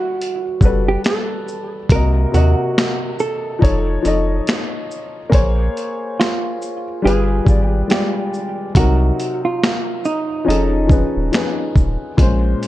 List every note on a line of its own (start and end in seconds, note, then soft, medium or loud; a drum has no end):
0.00 0.61 G3 medium
0.00 0.42 F#4 medium
0.00 0.88 F#4 medium
0.00 0.64 A4 medium
0.00 0.65 B4 medium
0.00 1.91 F#5 medium
0.21 closed hi-hat medium
0.61 0.97 F#1 medium
0.61 1.75 G3 medium
0.61 1.76 F#4 medium
0.61 1.77 A4 medium
0.61 kick medium
0.61 shaker soft
0.65 1.78 B4 medium
0.88 1.04 G4 medium
1.04 1.92 A4 loud
1.04 finger snap medium
1.04 snare loud
1.04 closed hi-hat medium
1.48 shaker soft
1.89 2.26 C2 loud
1.89 2.28 C3 medium
1.89 2.29 A#3 medium
1.89 2.34 A#4 loud
1.89 kick loud
1.89 closed hi-hat medium
1.94 2.30 F#4 medium
1.94 2.31 D#5 medium
2.32 2.55 D#2 medium
2.32 3.61 C3 medium
2.32 3.62 A#3 medium
2.32 3.20 F#4 loud
2.32 3.62 F#4 medium
2.32 closed hi-hat soft
2.32 shaker soft
2.37 3.63 D#5 medium
2.78 finger snap medium
2.78 snare loud
2.78 closed hi-hat medium
3.19 4.87 A4 medium
3.19 shaker medium
3.59 3.98 F1 medium
3.59 3.98 F3 medium
3.59 3.99 D#4 medium
3.59 4.00 A4 medium
3.59 kick medium
3.63 4.00 C#5 medium
3.63 closed hi-hat medium
4.02 4.41 F1 medium
4.02 5.18 F3 medium
4.02 5.18 D#4 medium
4.02 5.19 A4 medium
4.02 closed hi-hat soft
4.02 shaker soft
4.07 5.20 D#5 medium
4.47 finger snap medium
4.47 snare medium
4.47 closed hi-hat medium
4.91 shaker soft
5.30 5.69 A#1 loud
5.30 6.83 A#3 medium
5.30 6.84 G#4 medium
5.30 6.84 C5 medium
5.30 kick loud
5.30 closed hi-hat medium
5.34 6.85 C#5 loud
5.77 closed hi-hat soft
5.77 shaker soft
6.20 7.05 F4 medium
6.20 finger snap medium
6.20 snare medium
6.20 closed hi-hat medium
6.62 shaker medium
7.02 7.41 G1 loud
7.02 7.41 G3 medium
7.02 7.42 F4 medium
7.02 7.43 G#4 medium
7.02 7.65 G#4 medium
7.07 7.44 B4 medium
7.07 closed hi-hat medium
7.45 7.83 G#1 medium
7.45 7.84 G3 medium
7.45 7.85 F4 medium
7.45 7.86 G#4 medium
7.45 kick medium
7.45 shaker soft
7.50 7.86 D5 medium
7.65 7.91 G4 medium
7.88 8.65 G3 medium
7.88 8.67 G#3 medium
7.88 8.66 F4 medium
7.88 8.76 G4 medium
7.88 snare medium
7.88 closed hi-hat medium
7.92 8.67 D5 medium
7.92 finger snap medium
8.34 shaker soft
8.75 9.12 C2 loud
8.75 10.27 C3 medium
8.75 10.28 F#3 medium
8.75 10.28 D#4 medium
8.75 9.45 F#4 loud
8.75 kick loud
8.75 closed hi-hat loud
8.79 10.29 A#4 medium
9.20 closed hi-hat soft
9.20 shaker soft
9.45 10.06 F4 medium
9.63 finger snap medium
9.63 snare loud
9.63 closed hi-hat medium
10.05 10.47 D#4 medium
10.05 shaker medium
10.45 11.05 F1 medium
10.45 10.84 F3 medium
10.45 10.84 C#4 medium
10.45 10.85 D#4 medium
10.45 11.72 D#4 medium
10.45 10.86 G#4 medium
10.49 10.86 A4 medium
10.49 closed hi-hat medium
10.87 11.27 F3 medium
10.87 11.27 C#4 medium
10.87 11.28 D#4 medium
10.87 11.28 G#4 medium
10.87 kick medium
10.87 shaker soft
10.92 11.29 B4 medium
11.16 11.31 D#1 loud
11.32 12.08 F3 medium
11.32 12.09 C#4 medium
11.32 12.10 D#4 medium
11.32 12.10 G#4 medium
11.32 finger snap medium
11.32 snare loud
11.32 closed hi-hat medium
11.36 12.11 B4 medium
11.76 11.97 D#1 medium
11.76 kick medium
11.76 shaker soft
12.17 12.55 A#1 loud
12.17 12.67 A#2 medium
12.17 12.67 G#3 medium
12.17 12.67 C#4 medium
12.17 kick loud
12.17 closed hi-hat loud
12.22 12.67 C5 medium
12.63 closed hi-hat soft
12.63 shaker soft